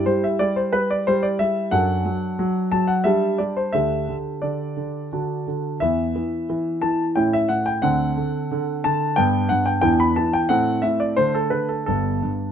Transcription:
grand piano
Already playing: E4 G4
0.06 G3 C5
0.24 E5
0.39 G3 D5
0.56 C5
0.73 G3 B4
0.91 D5
1.07 G3 C5
1.23 D5
1.39 G3 E5
1.71 F#2 F#3 D4 A4 F#5
2.05 F#3
2.39 F#3
2.72 F#3 A5
2.87 F#5
3.04 G3 D4 G4 E5
3.38 G3 D5
3.57 C5
3.73 D2 D3 D4 G4 E5
4.08 D3
4.42 D3 D5
4.77 D3
5.13 D3 D4 F#4
5.47 D3
5.80 E2 E3 B3 E4 E5
6.16 E3
6.50 E3
6.82 E3 A5
7.16 A2 C#4 E4 G5
7.33 E5
7.49 A2 F#5
7.66 G5
7.82 D2 D3 C4 D4 F#5
8.17 D3
8.51 D3
8.84 D3 A5
9.16 G2 B3 D4 G5
9.49 G2 F#5
9.66 G5
9.81 E2 E3 B3 D4 G5
10.00 B5
10.16 E3 A5
10.33 G5
10.49 A2 A3 C4 F#5
10.82 A2 E5
11.00 D5
11.17 D3 A3 D4 C5
11.35 A4
11.50 D3 B4
11.69 A4
11.86 G1 G2 B3 D4 A4
12.22 G2

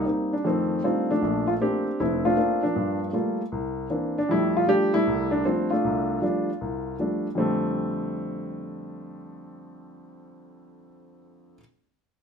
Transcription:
grand piano
Already playing: G3
0.05 A#3 C4 D#4
0.33 D4
0.45 F2 D#3 A3 C4
0.84 G3 A3 C4 D4 D#4 F4
1.10 F3 A3 D4
1.22 A#1
1.48 F4
1.61 A3 A#3 C4 D4 G4
2.00 F1 A3 C4 E4
2.25 A3 D4 F4
2.37 A3 A#3 C4 D4
2.63 F3 A#3 D4
2.76 G2
3.13 G3 A3 A#3 F4
3.52 C2
3.90 E3 A#3 C4 D4
4.18 D4
4.29 F2 G3 A3 E4
4.57 F4
4.68 F3 G3 A3 D4 G4
4.94 G3 A3 E4
5.07 C2
5.31 D4
5.45 F3 G3 A3 C4 D4
5.71 A3 D4 F4
5.84 C2
6.22 F3 G3 A3 D4
6.61 C2
6.99 F3 G3 A3 D4
7.35 F2 D3 G3 A3 C4

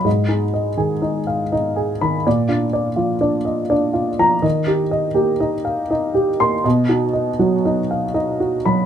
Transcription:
upright piano
0.05 G#2 D#5
0.28 D#4 G#4
0.54 D#5
0.77 D#3 G#4
1.02 D#4 D#5
1.27 F5
1.52 D#4 D#5
1.76 G#4
2.01 D#3 B5
2.27 A#2 D5
2.48 D4 F4
2.73 D5
2.96 F3 F4
3.21 D4 D5
3.45 D#5
3.70 D4 D5
3.93 F4
4.19 F3 A#5
4.42 D#3 D#5
4.67 D#4 G4
4.91 D#5
5.14 A#3 G4
5.40 D#4 D#5
5.65 F5
5.90 D#4 D#5
6.14 G4
6.40 A#3 C6
6.64 B2 D#5
6.89 D#4 F#4
7.13 D#5
7.39 F#3 F#4
7.65 D#4 D#5
7.91 F5
8.14 D#4 D#5
8.40 F#4
8.65 F#3 B5

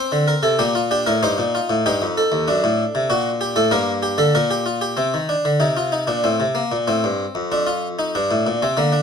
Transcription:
harpsichord
Already playing: C4 C5
0.12 D3
0.28 A#4
0.43 C3 A4
0.59 A#2 A#3 G4
0.75 F4
0.91 D4 G4
1.06 A2 A#4
1.23 G2 D#4 C5
1.38 A#2
1.55 F4
1.70 A2
1.86 G2 D#4 G4
2.02 F2
2.17 A4
2.32 D#2
2.48 F#2 D4
2.64 A2
2.95 C3
3.10 A#2 F#4
3.41 G4
3.56 A2 A4
3.71 G2 A#3 A#4
4.03 G4
4.18 D3 A4
4.35 A#2 A#4
4.51 G4
4.66 F4
4.81 G4
4.97 C3 C4
5.14 D#3
5.29 D4
5.45 D3
5.60 C3 D#4
5.77 F4
5.92 D#4
6.07 A#2 D4
6.24 A2 C4
6.40 C3
6.55 A#3
6.72 A#2
6.87 A2 C4
7.04 G2
7.35 F2
7.52 F2 D4
7.67 F4
7.99 D#4
8.15 G2 D4
8.31 A2
8.47 A#2
8.62 C3 C4
8.77 D3 A#3
8.93 D4

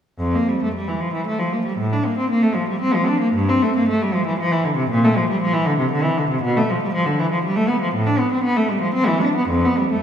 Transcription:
cello
0.19 F2
0.35 A#3
0.49 G3
0.63 A3
0.74 G3
0.88 E3
1.00 F3
1.14 E3
1.27 A3
1.39 F3
1.53 A#3
1.65 G3
1.78 A2
1.92 D4
2.06 A#3
2.18 C4
2.30 A#3
2.42 A3
2.55 F3
2.69 G3
2.81 C4
2.94 F3
3.07 D4
3.20 A#3
3.34 G2
3.49 C4
3.62 A3
3.76 A#3
3.88 A3
4.02 G3
4.14 F3
4.26 E3
4.39 F3
4.51 E3
4.65 D3
4.76 C3
4.89 A#2
5.04 A3
5.17 F3
5.30 G3
5.41 F3
5.53 E3
5.65 D3
5.79 C3
5.91 D3
6.03 E3
6.17 D3
6.30 C3
6.42 B2
6.57 A3
6.70 F3
6.83 G3
6.93 F3
7.06 D3
7.19 E3
7.31 F3
7.44 G3
7.56 A3
7.68 B3
7.81 F3
7.94 A2
8.07 D4
8.19 B3
8.32 C4
8.43 B3
8.56 A3
8.69 G3
8.81 F3
8.94 C4
9.07 E3
9.21 D4
9.35 B3
9.49 F2
9.65 B3
9.78 G3
9.91 A3

